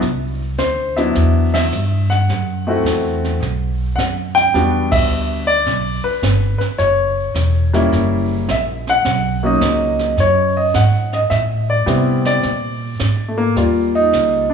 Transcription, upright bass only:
0, 0, Header, 1, 3, 480
1, 0, Start_track
1, 0, Tempo, 563910
1, 26, Time_signature, 4, 2, 24, 8
1, 12374, End_track
2, 0, Start_track
2, 0, Title_t, "Upright bass"
2, 0, Program_c, 0, 32
2, 14, Note_on_c, 0, 36, 75
2, 486, Note_off_c, 0, 36, 0
2, 501, Note_on_c, 0, 38, 88
2, 970, Note_off_c, 0, 38, 0
2, 987, Note_on_c, 0, 40, 85
2, 1453, Note_off_c, 0, 40, 0
2, 1472, Note_on_c, 0, 43, 83
2, 1936, Note_off_c, 0, 43, 0
2, 1947, Note_on_c, 0, 42, 80
2, 2408, Note_off_c, 0, 42, 0
2, 2413, Note_on_c, 0, 40, 88
2, 2886, Note_off_c, 0, 40, 0
2, 2897, Note_on_c, 0, 35, 92
2, 3368, Note_off_c, 0, 35, 0
2, 3382, Note_on_c, 0, 42, 79
2, 3851, Note_off_c, 0, 42, 0
2, 3865, Note_on_c, 0, 40, 74
2, 4333, Note_off_c, 0, 40, 0
2, 4337, Note_on_c, 0, 38, 85
2, 4809, Note_off_c, 0, 38, 0
2, 4815, Note_on_c, 0, 35, 82
2, 5126, Note_off_c, 0, 35, 0
2, 5297, Note_on_c, 0, 31, 82
2, 5607, Note_off_c, 0, 31, 0
2, 5778, Note_on_c, 0, 30, 83
2, 6247, Note_off_c, 0, 30, 0
2, 6252, Note_on_c, 0, 28, 89
2, 6726, Note_off_c, 0, 28, 0
2, 6746, Note_on_c, 0, 30, 88
2, 7213, Note_off_c, 0, 30, 0
2, 7233, Note_on_c, 0, 34, 85
2, 7697, Note_off_c, 0, 34, 0
2, 7705, Note_on_c, 0, 35, 87
2, 8173, Note_off_c, 0, 35, 0
2, 8184, Note_on_c, 0, 37, 89
2, 8652, Note_off_c, 0, 37, 0
2, 8659, Note_on_c, 0, 42, 87
2, 9129, Note_off_c, 0, 42, 0
2, 9148, Note_on_c, 0, 44, 84
2, 9613, Note_off_c, 0, 44, 0
2, 9625, Note_on_c, 0, 45, 81
2, 10092, Note_off_c, 0, 45, 0
2, 10100, Note_on_c, 0, 48, 90
2, 10569, Note_off_c, 0, 48, 0
2, 10589, Note_on_c, 0, 46, 82
2, 11054, Note_off_c, 0, 46, 0
2, 11066, Note_on_c, 0, 44, 79
2, 11532, Note_off_c, 0, 44, 0
2, 11541, Note_on_c, 0, 39, 70
2, 12009, Note_off_c, 0, 39, 0
2, 12024, Note_on_c, 0, 37, 80
2, 12374, Note_off_c, 0, 37, 0
2, 12374, End_track
3, 0, Start_track
3, 0, Title_t, "Muted upright bass strokes"
3, 5147, Note_on_c, 9, 29, 40
3, 5232, Note_off_c, 9, 29, 0
3, 5629, Note_on_c, 9, 29, 38
3, 5715, Note_off_c, 9, 29, 0
3, 12374, End_track
0, 0, End_of_file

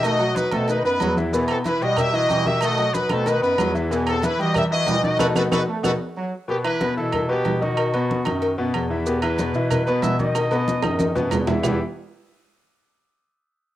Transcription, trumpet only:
0, 0, Header, 1, 2, 480
1, 0, Start_track
1, 0, Key_signature, 1, "minor"
1, 0, Tempo, 322407
1, 55, Time_signature, 4, 2, 24, 8
1, 20484, End_track
2, 0, Start_track
2, 0, Title_t, "Trumpet"
2, 0, Program_c, 0, 56
2, 9679, Note_on_c, 0, 67, 97
2, 9782, Note_off_c, 0, 67, 0
2, 9902, Note_on_c, 0, 71, 116
2, 10346, Note_off_c, 0, 71, 0
2, 10383, Note_on_c, 0, 69, 103
2, 10827, Note_off_c, 0, 69, 0
2, 10876, Note_on_c, 0, 67, 99
2, 11359, Note_on_c, 0, 66, 87
2, 11381, Note_off_c, 0, 67, 0
2, 12787, Note_off_c, 0, 66, 0
2, 13494, Note_on_c, 0, 67, 88
2, 13718, Note_off_c, 0, 67, 0
2, 13726, Note_on_c, 0, 71, 100
2, 14400, Note_off_c, 0, 71, 0
2, 14450, Note_on_c, 0, 71, 94
2, 14668, Note_off_c, 0, 71, 0
2, 14677, Note_on_c, 0, 71, 97
2, 14909, Note_off_c, 0, 71, 0
2, 14928, Note_on_c, 0, 76, 106
2, 15155, Note_off_c, 0, 76, 0
2, 15180, Note_on_c, 0, 75, 105
2, 16799, Note_off_c, 0, 75, 0
2, 20484, End_track
0, 0, End_of_file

